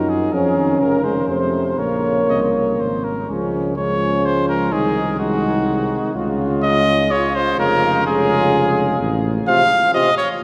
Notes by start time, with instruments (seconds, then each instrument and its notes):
Already playing: tuba F#2, french horn D#4, flugelhorn F#4, trumpet A#4
0.09 trumpet G#4
0.33 tuba F2, euphonium F3, french horn C#4, flugelhorn G#4, trumpet A#4
0.56 euphonium D#3
0.80 tuba F1, euphonium C#3, trumpet A#4, flugelhorn A#4
1.04 french horn G#3, trumpet C5
1.28 tuba F2, euphonium C3, french horn A3, trumpet C5, flugelhorn C5
1.78 tuba A#1, euphonium C#3, french horn A#3, trumpet A#4, flugelhorn C#5
2.29 tuba C2, trumpet D#5
2.55 trumpet C#5
2.79 tuba G#1, trumpet C5
3.04 trumpet A#4
3.29 tuba C#2, euphonium F3, french horn G#3, flugelhorn C#4
3.77 euphonium F3, french horn G#3, flugelhorn C#4, trumpet C#5
4.25 trumpet C5
4.49 trumpet A#4
4.72 tuba C2, euphonium D#3, french horn G#3, flugelhorn D#4, trumpet G#4
5.19 euphonium D#3, french horn G#3, flugelhorn D#4, trumpet F#4
6.15 tuba C#2, euphonium C#3, french horn G#3, flugelhorn F4
6.63 trumpet D#5
7.10 euphonium C#3, french horn G#3, flugelhorn F4, trumpet C#5
7.35 trumpet C5
7.58 tuba F1, euphonium C#3, french horn G#3, flugelhorn F4, trumpet A#4
8.06 euphonium C#3, french horn G#3, flugelhorn F4, trumpet G#4
9.00 tuba A1
9.47 euphonium C3, french horn C4, flugelhorn F4, trumpet F5
9.94 euphonium C3, french horn C4, flugelhorn F4, trumpet D#5
10.18 trumpet C#5